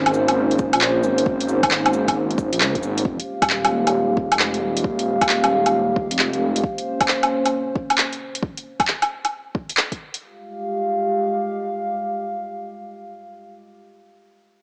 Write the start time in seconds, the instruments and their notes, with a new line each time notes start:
Already playing: detuned saw bass G#1, analog synth pad A#3 C#4 C5
0.06 closed hi-hat, low woodblock
0.14 cabasa
0.28 closed hi-hat, low woodblock
0.51 closed hi-hat
0.59 kick, cabasa
0.73 detuned saw bass A#1, closed hi-hat, low woodblock
0.81 clap
1.04 detuned saw bass G#1, cabasa
1.18 closed hi-hat
1.26 kick
1.40 closed hi-hat
1.49 cabasa
1.63 detuned saw bass G#1, kick, closed hi-hat, low woodblock
1.71 clap
1.86 closed hi-hat, low woodblock
1.93 cabasa
2.08 kick, closed hi-hat, low woodblock
2.31 closed hi-hat
2.38 kick, cabasa
2.52 detuned saw bass A#1, closed hi-hat
2.60 detuned saw bass C#2, clap
2.75 detuned saw bass F1, kick, closed hi-hat
2.83 detuned saw bass G#1, cabasa
2.98 closed hi-hat
3.05 detuned saw bass F1, analog synth pad G#3 G4 F5, kick
3.20 closed hi-hat
3.42 detuned saw bass D#1, kick, closed hi-hat, low woodblock
3.50 clap
3.65 closed hi-hat, low woodblock
3.87 closed hi-hat, low woodblock
4.17 kick
4.31 detuned saw bass F1, closed hi-hat, low woodblock
4.39 clap
4.54 closed hi-hat
4.62 detuned saw bass D#1
4.77 closed hi-hat
4.84 kick
4.99 closed hi-hat
5.21 detuned saw bass D#1, kick, closed hi-hat, low woodblock
5.29 clap
5.44 closed hi-hat, low woodblock
5.66 closed hi-hat, low woodblock
5.96 kick
6.10 detuned saw bass F1, closed hi-hat
6.19 clap
6.33 closed hi-hat
6.56 closed hi-hat
6.64 analog synth pad A#3 C#4 C5, kick
6.78 closed hi-hat
7.01 kick, closed hi-hat, low woodblock
7.08 clap
7.23 closed hi-hat, low woodblock
7.46 closed hi-hat, low woodblock
7.76 kick
7.90 closed hi-hat, low woodblock
7.98 clap
8.13 closed hi-hat
8.35 closed hi-hat
8.43 kick
8.58 closed hi-hat
8.80 kick, closed hi-hat, low woodblock
8.88 clap
9.02 closed hi-hat, low woodblock
9.25 closed hi-hat, low woodblock
9.55 kick
9.69 closed hi-hat
9.77 clap
9.92 kick, closed hi-hat
10.14 closed hi-hat
10.21 analog synth pad G#3 G4 F5